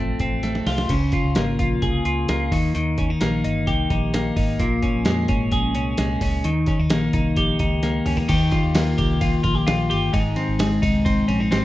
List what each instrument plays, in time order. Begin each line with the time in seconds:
Already playing: fingered electric bass A1, clean electric guitar F2 A3 C4
0.19 fingered electric bass A1, clean electric guitar C4, kick, closed hi-hat
0.43 clean electric guitar A3, snare, closed hi-hat
0.55 snare
0.66 fingered electric bass C2, clean electric guitar F4, snare, open hi-hat
0.78 snare
0.89 fingered electric bass C#2, clean electric guitar C#3, kick, closed hi-hat, crash
1.12 clean electric guitar F4, kick, closed hi-hat
1.25 fingered electric bass C#2
1.35 fingered electric bass G#1, clean electric guitar A#3, snare, closed hi-hat
1.59 fingered electric bass A#1, clean electric guitar F4, kick, closed hi-hat
1.82 fingered electric bass C2, clean electric guitar G#4, kick, closed hi-hat
2.05 fingered electric bass C#2, clean electric guitar F4, closed hi-hat
2.28 fingered electric bass C#2, clean electric guitar A#3, snare, closed hi-hat
2.52 fingered electric bass D#2, clean electric guitar D#3, kick, open hi-hat
2.75 fingered electric bass D#2, clean electric guitar D#3, closed hi-hat
2.98 clean electric guitar C#4, kick, closed hi-hat
3.10 clean electric guitar D#4
3.21 fingered electric bass A#1, clean electric guitar A#3, snare, closed hi-hat
3.44 fingered electric bass G1, clean electric guitar D#4, closed hi-hat
3.67 fingered electric bass C2, clean electric guitar G4, kick, closed hi-hat
3.90 fingered electric bass A#1, clean electric guitar D#4, kick, closed hi-hat
4.14 clean electric guitar A#3, snare, closed hi-hat
4.36 fingered electric bass G#1, clean electric guitar D#4, kick, open hi-hat
4.59 fingered electric bass A#1, clean electric guitar A#2, kick, closed hi-hat
4.82 clean electric guitar C#4, kick, closed hi-hat
4.95 fingered electric bass A#1
5.05 fingered electric bass F2, clean electric guitar G#3, snare, closed hi-hat
5.28 fingered electric bass G#1, clean electric guitar C#4, kick, closed hi-hat
5.52 fingered electric bass A#1, clean electric guitar G#4, kick, closed hi-hat
5.75 fingered electric bass C2, clean electric guitar C#4, closed hi-hat
5.98 fingered electric bass C2, clean electric guitar G#3, snare, closed hi-hat
6.21 fingered electric bass C#2, clean electric guitar C#4, kick, open hi-hat
6.44 fingered electric bass D#2, clean electric guitar D#3, closed hi-hat
6.66 clean electric guitar C#4, kick, snare, closed hi-hat
6.79 fingered electric bass D#2, clean electric guitar D#4
6.90 fingered electric bass A#1, clean electric guitar A#3, snare, closed hi-hat
7.13 fingered electric bass C2, clean electric guitar D#4, kick, closed hi-hat
7.36 fingered electric bass A#1, clean electric guitar G4, kick, closed hi-hat
7.59 fingered electric bass C#2, clean electric guitar D#4, kick, closed hi-hat
7.83 clean electric guitar A#3, snare, closed hi-hat
8.06 fingered electric bass C#2, clean electric guitar C#4, mid tom, open hi-hat
8.17 clean electric guitar D#4, floor tom
8.28 fingered electric bass D#2, clean electric guitar D#3 G4, kick, crash, ride
8.51 clean electric guitar F4, kick, snare, ride
8.64 fingered electric bass D#2
8.75 clean electric guitar A#3, snare, ride
8.98 fingered electric bass C2, clean electric guitar G4, kick, ride
9.21 clean electric guitar F4, kick, ride
9.43 fingered electric bass A#1, clean electric guitar F4, kick, ride
9.55 clean electric guitar G4
9.67 fingered electric bass A#1, clean electric guitar F4, snare, ride
9.90 fingered electric bass G1, clean electric guitar G4, ride
10.13 fingered electric bass G#1, clean electric guitar G#2 D#4, kick, ride
10.36 clean electric guitar C4, snare, ride
10.48 fingered electric bass G#1
10.59 clean electric guitar G#3, snare, ride
10.82 fingered electric bass C2, clean electric guitar D#4, kick, ride
11.05 clean electric guitar C4, kick, ride
11.28 fingered electric bass A#1, clean electric guitar C#4, ride
11.40 clean electric guitar D#4
11.51 fingered electric bass G#1, clean electric guitar C4, snare, ride